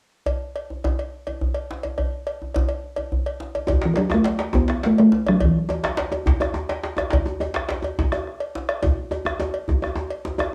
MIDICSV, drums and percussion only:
0, 0, Header, 1, 4, 480
1, 0, Start_track
1, 0, Tempo, 285442
1, 444, Time_signature, 12, 3, 24, 8
1, 17729, End_track
2, 0, Start_track
2, 0, Title_t, "Bombo"
2, 6223, Note_on_c, 9, 43, 73
2, 6391, Note_off_c, 9, 43, 0
2, 6923, Note_on_c, 9, 37, 70
2, 7091, Note_off_c, 9, 37, 0
2, 7667, Note_on_c, 9, 43, 84
2, 7835, Note_off_c, 9, 43, 0
2, 7902, Note_on_c, 9, 37, 59
2, 8070, Note_off_c, 9, 37, 0
2, 8159, Note_on_c, 9, 37, 26
2, 8327, Note_off_c, 9, 37, 0
2, 8888, Note_on_c, 9, 37, 66
2, 9056, Note_off_c, 9, 37, 0
2, 9126, Note_on_c, 9, 43, 82
2, 9294, Note_off_c, 9, 43, 0
2, 9832, Note_on_c, 9, 37, 71
2, 10000, Note_off_c, 9, 37, 0
2, 10535, Note_on_c, 9, 43, 83
2, 10703, Note_off_c, 9, 43, 0
2, 10791, Note_on_c, 9, 37, 61
2, 10960, Note_off_c, 9, 37, 0
2, 11016, Note_on_c, 9, 37, 25
2, 11184, Note_off_c, 9, 37, 0
2, 11738, Note_on_c, 9, 37, 70
2, 11906, Note_off_c, 9, 37, 0
2, 11990, Note_on_c, 9, 43, 86
2, 12158, Note_off_c, 9, 43, 0
2, 12716, Note_on_c, 9, 37, 77
2, 12884, Note_off_c, 9, 37, 0
2, 13428, Note_on_c, 9, 43, 84
2, 13596, Note_off_c, 9, 43, 0
2, 13654, Note_on_c, 9, 37, 66
2, 13823, Note_off_c, 9, 37, 0
2, 13914, Note_on_c, 9, 37, 28
2, 14082, Note_off_c, 9, 37, 0
2, 14610, Note_on_c, 9, 37, 70
2, 14779, Note_off_c, 9, 37, 0
2, 14872, Note_on_c, 9, 37, 27
2, 14872, Note_on_c, 9, 43, 90
2, 15041, Note_off_c, 9, 37, 0
2, 15041, Note_off_c, 9, 43, 0
2, 15579, Note_on_c, 9, 37, 84
2, 15747, Note_off_c, 9, 37, 0
2, 16292, Note_on_c, 9, 37, 27
2, 16292, Note_on_c, 9, 43, 92
2, 16461, Note_off_c, 9, 37, 0
2, 16461, Note_off_c, 9, 43, 0
2, 16543, Note_on_c, 9, 37, 62
2, 16711, Note_off_c, 9, 37, 0
2, 17495, Note_on_c, 9, 37, 72
2, 17663, Note_off_c, 9, 37, 0
2, 17729, End_track
3, 0, Start_track
3, 0, Title_t, "Djembe"
3, 435, Note_on_c, 9, 62, 17
3, 435, Note_on_c, 9, 64, 55
3, 603, Note_off_c, 9, 62, 0
3, 603, Note_off_c, 9, 64, 0
3, 1181, Note_on_c, 9, 62, 21
3, 1181, Note_on_c, 9, 63, 47
3, 1349, Note_off_c, 9, 62, 0
3, 1349, Note_off_c, 9, 63, 0
3, 1422, Note_on_c, 9, 62, 60
3, 1422, Note_on_c, 9, 64, 58
3, 1590, Note_off_c, 9, 62, 0
3, 1590, Note_off_c, 9, 64, 0
3, 1889, Note_on_c, 9, 62, 20
3, 2058, Note_off_c, 9, 62, 0
3, 2142, Note_on_c, 9, 63, 52
3, 2310, Note_off_c, 9, 63, 0
3, 2378, Note_on_c, 9, 62, 22
3, 2378, Note_on_c, 9, 64, 66
3, 2546, Note_off_c, 9, 62, 0
3, 2546, Note_off_c, 9, 64, 0
3, 2868, Note_on_c, 9, 62, 63
3, 3036, Note_off_c, 9, 62, 0
3, 3105, Note_on_c, 9, 63, 53
3, 3273, Note_off_c, 9, 63, 0
3, 3338, Note_on_c, 9, 62, 19
3, 3338, Note_on_c, 9, 64, 61
3, 3507, Note_off_c, 9, 62, 0
3, 3507, Note_off_c, 9, 64, 0
3, 4066, Note_on_c, 9, 62, 21
3, 4066, Note_on_c, 9, 63, 50
3, 4234, Note_off_c, 9, 62, 0
3, 4234, Note_off_c, 9, 63, 0
3, 4304, Note_on_c, 9, 62, 66
3, 4304, Note_on_c, 9, 64, 67
3, 4472, Note_off_c, 9, 62, 0
3, 4472, Note_off_c, 9, 64, 0
3, 4776, Note_on_c, 9, 62, 20
3, 4944, Note_off_c, 9, 62, 0
3, 5005, Note_on_c, 9, 63, 52
3, 5173, Note_off_c, 9, 63, 0
3, 5249, Note_on_c, 9, 62, 22
3, 5249, Note_on_c, 9, 64, 63
3, 5417, Note_off_c, 9, 62, 0
3, 5417, Note_off_c, 9, 64, 0
3, 5721, Note_on_c, 9, 62, 54
3, 5889, Note_off_c, 9, 62, 0
3, 5972, Note_on_c, 9, 63, 46
3, 6141, Note_off_c, 9, 63, 0
3, 6174, Note_on_c, 9, 63, 82
3, 6206, Note_on_c, 9, 64, 72
3, 6342, Note_off_c, 9, 63, 0
3, 6375, Note_off_c, 9, 64, 0
3, 6418, Note_on_c, 9, 62, 69
3, 6586, Note_off_c, 9, 62, 0
3, 6654, Note_on_c, 9, 62, 65
3, 6822, Note_off_c, 9, 62, 0
3, 6891, Note_on_c, 9, 63, 98
3, 6931, Note_off_c, 9, 63, 0
3, 6931, Note_on_c, 9, 63, 60
3, 7099, Note_off_c, 9, 63, 0
3, 7138, Note_on_c, 9, 62, 74
3, 7156, Note_off_c, 9, 62, 0
3, 7156, Note_on_c, 9, 62, 65
3, 7324, Note_off_c, 9, 62, 0
3, 7381, Note_on_c, 9, 62, 72
3, 7549, Note_off_c, 9, 62, 0
3, 7620, Note_on_c, 9, 63, 94
3, 7637, Note_on_c, 9, 64, 72
3, 7788, Note_off_c, 9, 63, 0
3, 7805, Note_off_c, 9, 64, 0
3, 7873, Note_on_c, 9, 62, 69
3, 7901, Note_on_c, 9, 63, 59
3, 8041, Note_off_c, 9, 62, 0
3, 8069, Note_off_c, 9, 63, 0
3, 8131, Note_on_c, 9, 62, 72
3, 8299, Note_off_c, 9, 62, 0
3, 8610, Note_on_c, 9, 62, 67
3, 8778, Note_off_c, 9, 62, 0
3, 8854, Note_on_c, 9, 63, 59
3, 9022, Note_off_c, 9, 63, 0
3, 9090, Note_on_c, 9, 64, 64
3, 9258, Note_off_c, 9, 64, 0
3, 9564, Note_on_c, 9, 63, 80
3, 9571, Note_on_c, 9, 62, 21
3, 9732, Note_off_c, 9, 63, 0
3, 9739, Note_off_c, 9, 62, 0
3, 9808, Note_on_c, 9, 63, 55
3, 9814, Note_on_c, 9, 62, 80
3, 9976, Note_off_c, 9, 63, 0
3, 9982, Note_off_c, 9, 62, 0
3, 10041, Note_on_c, 9, 62, 69
3, 10043, Note_off_c, 9, 62, 0
3, 10043, Note_on_c, 9, 62, 80
3, 10211, Note_off_c, 9, 62, 0
3, 10283, Note_on_c, 9, 63, 73
3, 10451, Note_off_c, 9, 63, 0
3, 10524, Note_on_c, 9, 64, 72
3, 10540, Note_on_c, 9, 62, 70
3, 10692, Note_off_c, 9, 64, 0
3, 10708, Note_off_c, 9, 62, 0
3, 10764, Note_on_c, 9, 63, 73
3, 10784, Note_off_c, 9, 63, 0
3, 10784, Note_on_c, 9, 63, 58
3, 10952, Note_off_c, 9, 63, 0
3, 10995, Note_on_c, 9, 63, 96
3, 11164, Note_off_c, 9, 63, 0
3, 11255, Note_on_c, 9, 62, 72
3, 11423, Note_off_c, 9, 62, 0
3, 11491, Note_on_c, 9, 62, 70
3, 11660, Note_off_c, 9, 62, 0
3, 11713, Note_on_c, 9, 63, 71
3, 11732, Note_off_c, 9, 63, 0
3, 11732, Note_on_c, 9, 63, 58
3, 11900, Note_off_c, 9, 63, 0
3, 11945, Note_on_c, 9, 62, 73
3, 11985, Note_on_c, 9, 64, 67
3, 12113, Note_off_c, 9, 62, 0
3, 12154, Note_off_c, 9, 64, 0
3, 12202, Note_on_c, 9, 63, 72
3, 12370, Note_off_c, 9, 63, 0
3, 12447, Note_on_c, 9, 63, 85
3, 12465, Note_on_c, 9, 62, 23
3, 12615, Note_off_c, 9, 63, 0
3, 12633, Note_off_c, 9, 62, 0
3, 12679, Note_on_c, 9, 62, 76
3, 12710, Note_on_c, 9, 63, 56
3, 12847, Note_off_c, 9, 62, 0
3, 12878, Note_off_c, 9, 63, 0
3, 12923, Note_on_c, 9, 62, 79
3, 12955, Note_off_c, 9, 62, 0
3, 12955, Note_on_c, 9, 62, 72
3, 13123, Note_off_c, 9, 62, 0
3, 13156, Note_on_c, 9, 63, 69
3, 13324, Note_off_c, 9, 63, 0
3, 13430, Note_on_c, 9, 64, 66
3, 13432, Note_on_c, 9, 62, 66
3, 13598, Note_off_c, 9, 64, 0
3, 13600, Note_off_c, 9, 62, 0
3, 13655, Note_on_c, 9, 63, 58
3, 13659, Note_off_c, 9, 63, 0
3, 13659, Note_on_c, 9, 63, 67
3, 13827, Note_off_c, 9, 63, 0
3, 14384, Note_on_c, 9, 62, 65
3, 14552, Note_off_c, 9, 62, 0
3, 14842, Note_on_c, 9, 63, 89
3, 14857, Note_on_c, 9, 64, 58
3, 15010, Note_off_c, 9, 63, 0
3, 15026, Note_off_c, 9, 64, 0
3, 15319, Note_on_c, 9, 63, 68
3, 15488, Note_off_c, 9, 63, 0
3, 15558, Note_on_c, 9, 63, 69
3, 15580, Note_off_c, 9, 63, 0
3, 15580, Note_on_c, 9, 63, 45
3, 15748, Note_off_c, 9, 63, 0
3, 15800, Note_on_c, 9, 63, 93
3, 15806, Note_on_c, 9, 62, 58
3, 15968, Note_off_c, 9, 63, 0
3, 15974, Note_off_c, 9, 62, 0
3, 16276, Note_on_c, 9, 64, 63
3, 16292, Note_on_c, 9, 63, 71
3, 16444, Note_off_c, 9, 64, 0
3, 16461, Note_off_c, 9, 63, 0
3, 16519, Note_on_c, 9, 63, 68
3, 16535, Note_off_c, 9, 63, 0
3, 16535, Note_on_c, 9, 63, 56
3, 16703, Note_off_c, 9, 63, 0
3, 16742, Note_on_c, 9, 63, 95
3, 16910, Note_off_c, 9, 63, 0
3, 17237, Note_on_c, 9, 63, 70
3, 17238, Note_on_c, 9, 62, 58
3, 17405, Note_off_c, 9, 63, 0
3, 17406, Note_off_c, 9, 62, 0
3, 17462, Note_on_c, 9, 63, 73
3, 17471, Note_off_c, 9, 63, 0
3, 17471, Note_on_c, 9, 63, 47
3, 17639, Note_off_c, 9, 63, 0
3, 17729, End_track
4, 0, Start_track
4, 0, Title_t, "Drums"
4, 441, Note_on_c, 9, 56, 46
4, 610, Note_off_c, 9, 56, 0
4, 933, Note_on_c, 9, 56, 39
4, 1101, Note_off_c, 9, 56, 0
4, 1416, Note_on_c, 9, 56, 40
4, 1584, Note_off_c, 9, 56, 0
4, 1665, Note_on_c, 9, 56, 41
4, 1833, Note_off_c, 9, 56, 0
4, 2132, Note_on_c, 9, 56, 43
4, 2300, Note_off_c, 9, 56, 0
4, 2597, Note_on_c, 9, 56, 41
4, 2765, Note_off_c, 9, 56, 0
4, 3083, Note_on_c, 9, 56, 44
4, 3252, Note_off_c, 9, 56, 0
4, 3325, Note_on_c, 9, 56, 48
4, 3494, Note_off_c, 9, 56, 0
4, 3813, Note_on_c, 9, 56, 44
4, 3981, Note_off_c, 9, 56, 0
4, 4280, Note_on_c, 9, 56, 40
4, 4449, Note_off_c, 9, 56, 0
4, 4518, Note_on_c, 9, 56, 40
4, 4687, Note_off_c, 9, 56, 0
4, 4987, Note_on_c, 9, 56, 44
4, 5155, Note_off_c, 9, 56, 0
4, 5489, Note_on_c, 9, 56, 43
4, 5657, Note_off_c, 9, 56, 0
4, 5971, Note_on_c, 9, 56, 42
4, 6139, Note_off_c, 9, 56, 0
4, 6195, Note_on_c, 9, 56, 53
4, 6363, Note_off_c, 9, 56, 0
4, 6676, Note_on_c, 9, 56, 45
4, 6844, Note_off_c, 9, 56, 0
4, 7159, Note_on_c, 9, 56, 46
4, 7327, Note_off_c, 9, 56, 0
4, 7404, Note_on_c, 9, 56, 44
4, 7573, Note_off_c, 9, 56, 0
4, 8382, Note_on_c, 9, 56, 48
4, 8550, Note_off_c, 9, 56, 0
4, 8855, Note_on_c, 9, 56, 56
4, 9023, Note_off_c, 9, 56, 0
4, 9088, Note_on_c, 9, 56, 57
4, 9257, Note_off_c, 9, 56, 0
4, 9584, Note_on_c, 9, 56, 51
4, 9752, Note_off_c, 9, 56, 0
4, 10056, Note_on_c, 9, 56, 50
4, 10224, Note_off_c, 9, 56, 0
4, 10295, Note_on_c, 9, 56, 52
4, 10464, Note_off_c, 9, 56, 0
4, 10775, Note_on_c, 9, 56, 51
4, 10943, Note_off_c, 9, 56, 0
4, 11252, Note_on_c, 9, 56, 44
4, 11420, Note_off_c, 9, 56, 0
4, 11746, Note_on_c, 9, 56, 49
4, 11914, Note_off_c, 9, 56, 0
4, 11991, Note_on_c, 9, 56, 56
4, 12160, Note_off_c, 9, 56, 0
4, 12460, Note_on_c, 9, 56, 46
4, 12628, Note_off_c, 9, 56, 0
4, 12928, Note_on_c, 9, 56, 45
4, 13096, Note_off_c, 9, 56, 0
4, 13189, Note_on_c, 9, 56, 45
4, 13357, Note_off_c, 9, 56, 0
4, 13659, Note_on_c, 9, 56, 44
4, 13827, Note_off_c, 9, 56, 0
4, 14132, Note_on_c, 9, 56, 43
4, 14300, Note_off_c, 9, 56, 0
4, 14610, Note_on_c, 9, 56, 47
4, 14779, Note_off_c, 9, 56, 0
4, 14842, Note_on_c, 9, 56, 56
4, 15010, Note_off_c, 9, 56, 0
4, 15330, Note_on_c, 9, 56, 43
4, 15499, Note_off_c, 9, 56, 0
4, 15814, Note_on_c, 9, 56, 41
4, 15982, Note_off_c, 9, 56, 0
4, 16040, Note_on_c, 9, 56, 43
4, 16208, Note_off_c, 9, 56, 0
4, 16520, Note_on_c, 9, 56, 42
4, 16688, Note_off_c, 9, 56, 0
4, 16993, Note_on_c, 9, 56, 47
4, 17162, Note_off_c, 9, 56, 0
4, 17476, Note_on_c, 9, 56, 48
4, 17644, Note_off_c, 9, 56, 0
4, 17729, End_track
0, 0, End_of_file